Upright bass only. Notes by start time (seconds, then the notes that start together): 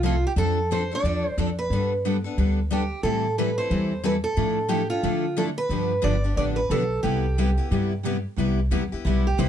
Already playing: C2
0.36 F2
1.03 E2
1.38 F2
1.70 G2
2.38 D2
3.03 A2
3.70 E2
4.37 A2
5.03 D3
5.69 G2
6.04 G1
6.37 A1
6.70 B1
7.04 C2
7.71 G2
8.38 C2
8.72 E2
8.93 muted upright bass stroke
9.05 B1
9.39 C2